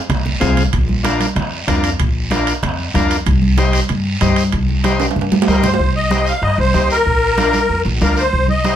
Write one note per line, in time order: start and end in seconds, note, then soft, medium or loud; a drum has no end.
0.09 0.35 C2 medium
0.09 bombo rim medium
0.09 low conga medium
0.09 high timbale medium
0.09 long guiro medium
0.26 low conga medium
0.40 0.67 C2 medium
0.40 0.63 C4 medium
0.40 0.63 F4 medium
0.40 0.63 G#4 medium
0.40 bombo low medium
0.40 bombo rim medium
0.40 low conga medium
0.40 high timbale medium
0.40 low timbale medium
0.40 short guiro medium
0.57 low conga medium
0.57 high timbale medium
0.57 short guiro medium
0.73 1.24 A#1 loud
0.73 bombo low medium
0.73 high conga soft
0.73 low conga medium
0.73 high timbale medium
0.73 long guiro medium
0.89 high conga medium
1.03 1.26 D4 medium
1.03 1.26 F4 medium
1.03 1.27 A#4 medium
1.03 bombo rim medium
1.03 high conga medium
1.03 high timbale medium
1.03 short guiro medium
1.20 high conga medium
1.20 high timbale medium
1.20 short guiro medium
1.36 1.61 F2 medium
1.36 bombo rim medium
1.36 low conga medium
1.36 high timbale medium
1.36 long guiro medium
1.52 high conga soft
1.67 1.93 F2 medium
1.67 1.90 D4 medium
1.67 1.90 F4 medium
1.67 1.91 A#4 medium
1.67 bombo low medium
1.67 bombo rim medium
1.67 high conga medium
1.67 low conga medium
1.67 high timbale medium
1.67 low timbale medium
1.67 short guiro medium
1.84 high timbale medium
1.84 short guiro medium
1.99 2.51 A#1 medium
1.99 bombo low medium
1.99 high conga soft
1.99 low conga medium
1.99 high timbale medium
1.99 long guiro medium
2.31 2.53 D4 medium
2.31 2.53 F4 medium
2.31 2.54 A#4 medium
2.31 bombo rim medium
2.31 high conga medium
2.31 high timbale medium
2.31 short guiro medium
2.47 high timbale medium
2.47 short guiro medium
2.63 2.88 F2 medium
2.63 bombo rim medium
2.63 low conga medium
2.63 high timbale medium
2.63 long guiro medium
2.78 high conga soft
2.94 3.20 F2 medium
2.94 3.17 D4 medium
2.94 3.17 F4 medium
2.94 3.17 A#4 loud
2.94 bombo low medium
2.94 bombo rim medium
2.94 high conga medium
2.94 low conga medium
2.94 high timbale medium
2.94 short guiro medium
3.11 high timbale medium
3.11 short guiro medium
3.26 3.77 C2 loud
3.26 bombo low medium
3.26 high conga soft
3.26 low conga medium
3.26 high timbale medium
3.26 long guiro medium
3.42 high conga medium
3.58 3.80 D#4 medium
3.58 3.80 G4 medium
3.58 3.80 C5 medium
3.58 bombo rim medium
3.58 high conga medium
3.58 high timbale medium
3.58 short guiro medium
3.73 high conga medium
3.73 high timbale medium
3.73 short guiro medium
3.89 4.15 G2 medium
3.89 low conga medium
3.89 high timbale medium
3.89 long guiro medium
4.05 high conga soft
4.21 4.47 G2 medium
4.21 4.43 D#4 medium
4.21 4.44 G4 medium
4.21 4.44 C5 medium
4.21 bombo low medium
4.21 bombo rim medium
4.21 high conga medium
4.21 low conga medium
4.21 high timbale medium
4.21 short guiro medium
4.36 high timbale medium
4.36 short guiro medium
4.52 5.03 C2 medium
4.52 bombo low medium
4.52 high conga soft
4.52 high timbale medium
4.52 long guiro medium
4.69 high conga medium
4.84 5.06 D#4 medium
4.84 5.07 G4 medium
4.84 5.07 C5 medium
4.84 bombo rim medium
4.84 high conga medium
4.84 high timbale medium
4.84 short guiro medium
5.00 high conga medium
5.00 high timbale medium
5.00 short guiro medium
5.11 high timbale medium
5.16 5.41 G2 medium
5.16 low conga medium
5.16 long guiro medium
5.21 high timbale medium
5.32 high conga medium
5.32 low timbale medium
5.42 low timbale medium
5.47 5.73 G2 medium
5.47 5.69 D#4 medium
5.47 5.70 G4 medium
5.47 5.63 A#4 medium
5.47 5.70 C5 medium
5.47 bombo low medium
5.47 bombo rim medium
5.47 high conga medium
5.47 short guiro medium
5.53 low timbale medium
5.63 5.93 C5 medium
5.63 low conga medium
5.63 low timbale medium
5.63 short guiro medium
5.74 low timbale medium
5.79 6.30 C2 medium
5.79 bombo low medium
5.79 high conga soft
5.79 long guiro medium
5.96 6.28 D#5 medium
6.10 6.33 D#4 medium
6.10 6.33 G4 medium
6.10 6.33 C5 medium
6.10 bombo rim medium
6.10 high conga medium
6.10 short guiro medium
6.27 6.43 F5 medium
6.27 short guiro medium
6.42 6.55 G2 medium
6.42 6.58 D#5 medium
6.42 bombo rim medium
6.42 long guiro medium
6.58 6.71 C2 loud
6.58 6.89 C5 medium
6.58 high conga soft
6.74 7.00 D#2 medium
6.74 6.96 D#4 medium
6.74 6.97 G4 medium
6.74 6.97 C5 medium
6.74 bombo low medium
6.74 bombo rim medium
6.74 high conga medium
6.74 short guiro medium
6.90 7.82 A#4 medium
6.90 short guiro medium
7.06 7.57 A#1 medium
7.06 bombo low medium
7.06 high conga soft
7.06 long guiro medium
7.38 7.60 D4 medium
7.38 7.60 F4 medium
7.38 7.60 A#4 medium
7.38 bombo rim medium
7.38 high conga medium
7.38 short guiro medium
7.53 high conga medium
7.53 short guiro medium
7.69 7.82 F2 medium
7.69 long guiro medium
7.85 7.98 A#1 loud
7.85 high conga soft
8.01 8.27 D2 loud
8.01 8.23 D4 medium
8.01 8.23 F4 medium
8.01 8.24 A#4 medium
8.01 8.18 A#4 medium
8.01 bombo low medium
8.01 bombo rim medium
8.01 high conga medium
8.01 short guiro medium
8.17 8.47 C5 medium
8.17 short guiro medium
8.33 8.76 C2 medium
8.33 bombo low medium
8.33 high conga soft
8.33 long guiro medium
8.48 8.76 D#5 medium
8.48 high conga medium
8.64 8.76 D#4 medium
8.64 8.76 G4 medium
8.64 8.76 C5 medium
8.64 bombo rim medium
8.64 high conga medium
8.64 short guiro medium